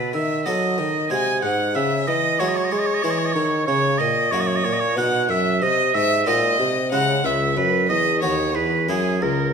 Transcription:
Already playing: harpsichord B2, bassoon B2, oboe B4, violin B4
0.13 harpsichord D#3, bassoon D#3, oboe E5, violin E5
0.46 harpsichord F#3 B3 F#4 A4, bassoon F#3, oboe D#5, violin D#5
0.78 harpsichord D#3, bassoon D#3
1.10 harpsichord C3 G#3 F#4 G#4, bassoon C3, violin G#5, oboe G#5
1.42 harpsichord G#2, bassoon G#2, oboe F#5, violin F#5
1.75 harpsichord C#3, bassoon C#3, violin E5, oboe E5
2.07 harpsichord E3, bassoon E3, oboe D#5, violin D#5
2.39 harpsichord F#3 G#3 E4 G#4, bassoon F#3, oboe C#5, violin C#5
2.48 oboe D#5
2.56 oboe C#5
2.64 oboe D#5
2.71 harpsichord G#3, bassoon G#3, oboe C#5
2.79 oboe D#5
2.86 oboe C#5
2.94 oboe D#5
3.03 bassoon E3, harpsichord E3 G#3 E4 G#4, oboe C#5
3.10 oboe D#5
3.18 oboe C#5
3.25 oboe D#5
3.33 bassoon D#3, harpsichord D#3, oboe C#5
3.66 bassoon C#3, harpsichord C#3, oboe C#5, violin C#5
3.98 harpsichord A#2, bassoon A#2, oboe D#5, violin D#5
4.31 bassoon F#2, harpsichord F#2 A#3 E4 F#4, oboe C#5, violin C#5
4.40 oboe D#5
4.47 oboe C#5
4.56 oboe D#5
4.64 bassoon A#2, harpsichord A#2, oboe C#5
4.73 oboe D#5
4.80 oboe C#5
4.97 bassoon B2, harpsichord B2 D#4 F#4, violin F#5, oboe F#5
5.29 harpsichord F#2, bassoon F#2, violin E5, oboe E5
5.62 harpsichord C3, bassoon C3, violin D#5, oboe D#5
5.95 harpsichord G#2, bassoon G#2, violin E5, oboe E5
6.26 harpsichord A#2 G#3 D#4 F#4, bassoon A#2, violin D#5, oboe D#5
6.59 harpsichord C3, bassoon C3
6.92 harpsichord C#3 G#3 C#4 E4, bassoon C#3, violin F#5, oboe F#5
7.24 bassoon C#2, harpsichord C#2, oboe E5, violin E5
7.57 harpsichord F#2, bassoon F#2, oboe B4, violin B4
7.89 bassoon E2, harpsichord E2, violin D#5, oboe D#5
8.21 harpsichord D#2 B3 D#4 F#4, bassoon D#2, violin C#5, oboe C#5
8.54 harpsichord E2, bassoon E2, violin B4, oboe B4
8.88 bassoon F#2, harpsichord F#2 C#4 E4 F#4, violin G#4, oboe G#4
9.21 harpsichord C#2, bassoon C#2, violin A#4, oboe A#4

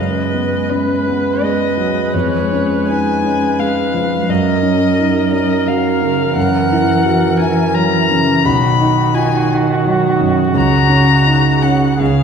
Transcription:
Already playing: grand piano F#2, cello G#3, viola B4, violin D#5
0.33 grand piano B3
0.70 grand piano C#4, violin B4
1.08 grand piano B3
1.42 grand piano G#3, violin D#5
1.77 grand piano F#3
2.13 grand piano F2, violin C#5
2.52 grand piano C#4
2.88 grand piano D#4, violin G#5
3.24 grand piano C#4
3.59 grand piano G#3, violin F5
3.94 grand piano F3
4.28 grand piano F#2, cello F#3, viola A#4, violin D#5
4.63 grand piano C#4
4.98 grand piano D#4
5.33 grand piano C#4, violin D#5
5.67 grand piano F#3, violin F5
6.02 grand piano C#3
6.35 grand piano F#2, cello E3, violin F#5
6.72 grand piano E4
7.05 grand piano F#4
7.40 grand piano E4, violin G#5
7.74 grand piano F#3, violin A#5
8.11 grand piano C#3
8.43 grand piano B1, cello D#3, viola F#4, violin B5
8.81 grand piano D#4
9.14 grand piano F4, violin G#5
9.50 grand piano D#4
9.85 grand piano F#3
10.20 grand piano F#2
10.54 grand piano C#2, cello C#3, violin A#5
10.89 grand piano C#4
11.26 grand piano D#4
11.63 grand piano C#4, violin F#5
11.99 grand piano C#2, viola G#4, violin F5

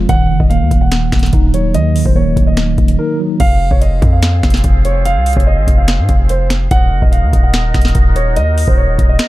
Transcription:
Already playing: tine electric piano F3 G#3 C4 F4
0.09 808-style bass D#1, tine electric piano D#3, grand piano F#5, kick, closed hi-hat
0.30 808-style bass F#1
0.40 808-style bass D#1, grand piano D#5, kick
0.50 tine electric piano A#3, grand piano F5, closed hi-hat
0.61 808-style bass D#2
0.71 808-style bass D#1, kick, closed hi-hat
0.81 grand piano F#5
0.91 finger snap, snare, closed hi-hat
1.12 808-style bass D#1, finger snap, kick, snare, closed hi-hat
1.19 snare, closed hi-hat
1.26 closed hi-hat
1.33 808-style bass D#1, tine electric piano D#4, kick, closed hi-hat
1.54 tine electric piano F#3, grand piano C#5, closed hi-hat
1.74 808-style bass D#2, tine electric piano D#3, grand piano D#5, closed hi-hat
1.96 open hi-hat
2.05 808-style bass D#1, grand piano C5, kick
2.16 tine electric piano A#3, grand piano C#5
2.37 808-style bass D#1, kick, closed hi-hat
2.47 grand piano D#5
2.57 finger snap, snare, closed hi-hat
2.78 808-style bass D#1, kick, closed hi-hat
2.88 closed hi-hat
2.99 tine electric piano D#4, grand piano A#4
3.20 tine electric piano F#3
3.40 808-style bass F1, flute section C4 F4 G#4 F5, grand piano F5, kick, closed hi-hat, crash
3.71 808-style bass F1, grand piano C#5, kick
3.81 grand piano D#5, closed hi-hat
4.02 808-style bass F2, kick, closed hi-hat
4.12 grand piano F5
4.22 finger snap, snare, closed hi-hat
4.43 808-style bass F1, finger snap, kick, snare, closed hi-hat
4.50 snare, closed hi-hat
4.57 closed hi-hat
4.64 808-style bass F1, kick, closed hi-hat
4.85 grand piano C#5, closed hi-hat
5.05 grand piano F5, closed hi-hat
5.16 808-style bass C2
5.26 closed hi-hat, open hi-hat
5.33 808-style bass F1, grand piano C#5, kick, closed hi-hat
5.40 closed hi-hat
5.47 grand piano D#5
5.57 808-style bass G#1
5.67 808-style bass F1, kick, closed hi-hat
5.78 grand piano F5
5.88 finger snap, snare, closed hi-hat
5.99 808-style bass G#2
6.09 808-style bass F1, kick, closed hi-hat
6.29 grand piano C5, closed hi-hat
6.50 finger snap, snare, closed hi-hat
6.71 808-style bass D#1, flute section D#4 F#4 A#4 D#5, grand piano F#5, kick, closed hi-hat
6.92 808-style bass F#1
7.02 808-style bass D#1, grand piano D#5, kick
7.12 grand piano F5, closed hi-hat
7.23 808-style bass D#2
7.33 808-style bass D#1, kick, closed hi-hat
7.43 grand piano F#5
7.54 finger snap, snare, closed hi-hat
7.74 808-style bass D#1, finger snap, kick, snare, closed hi-hat
7.81 snare, closed hi-hat
7.88 closed hi-hat
7.95 808-style bass D#1, kick, closed hi-hat
8.16 grand piano C#5, closed hi-hat
8.36 808-style bass D#2, grand piano D#5, closed hi-hat
8.58 open hi-hat
8.68 808-style bass D#1, grand piano C5, kick
8.78 grand piano C#5
8.99 808-style bass D#1, kick, closed hi-hat
9.09 grand piano D#5
9.19 finger snap, snare, closed hi-hat

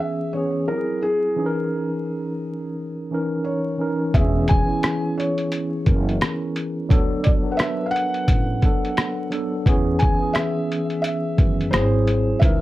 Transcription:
Already playing: tine electric piano E3 B3 C#4 G#4
0.00 felt piano E5
0.33 tine electric piano E3 B3 C#4, felt piano C#5
0.37 tine electric piano G#4
0.68 tine electric piano F#3 C4 E4 G4, felt piano A#4
0.78 tine electric piano G#4
1.02 felt piano G#4
1.36 tine electric piano E3 C#4 D#4 G#4
1.46 tine electric piano A#4
3.11 tine electric piano E3 C#4 D#4 A#4
3.44 felt piano C#5
3.78 tine electric piano E3 C#4 D#4 A#4
4.14 upright bass E1, tine electric piano E3 B3 C#4 G#4, felt piano E5, kick, closed hi-hat
4.48 felt piano G#5, kick, closed hi-hat
4.65 tine electric piano E3 B3 C#4 E4
4.83 cross-stick, closed hi-hat
5.17 felt piano C#5, closed hi-hat
5.38 closed hi-hat
5.52 closed hi-hat
5.85 upright bass F#1, tine electric piano E3 B3 C#4 A#4, kick, closed hi-hat
6.09 closed hi-hat
6.21 cross-stick, closed hi-hat
6.56 closed hi-hat
6.89 upright bass D2, tine electric piano F#3 B3 D4 A4, kick, closed hi-hat
7.23 felt piano D5, kick, closed hi-hat
7.42 tine electric piano F#3 B3 D4 A#4
7.52 tine electric piano B4, felt piano F#5
7.57 felt piano E5, cross-stick, closed hi-hat
7.86 felt piano F5
7.91 felt piano F#5
7.96 closed hi-hat
8.14 closed hi-hat
8.28 upright bass A1, kick, closed hi-hat
8.62 tine electric piano F#3 B3 D4 A4, kick, closed hi-hat
8.85 closed hi-hat
8.97 cross-stick, closed hi-hat
9.30 tine electric piano F#3 B3 D4 A4, closed hi-hat
9.66 upright bass E2, tine electric piano E3 B3 C#4 G#4, kick, closed hi-hat
9.99 felt piano G#5, kick, closed hi-hat
10.19 tine electric piano E3 B3 C#4 G#4
10.33 felt piano E5, cross-stick, closed hi-hat
10.72 closed hi-hat
10.90 closed hi-hat
11.02 felt piano E5, closed hi-hat
11.38 upright bass F#2, tine electric piano D#3 E3 B3 C#4, kick, closed hi-hat
11.61 closed hi-hat
11.71 upright bass G#1, tine electric piano F#3 A#3 E4, felt piano C5, cross-stick, closed hi-hat
11.75 tine electric piano G#4
11.80 tine electric piano C4
12.07 closed hi-hat
12.39 upright bass C#2, tine electric piano E3 C#4, felt piano E5, kick, closed hi-hat
12.44 tine electric piano D#4 A#4

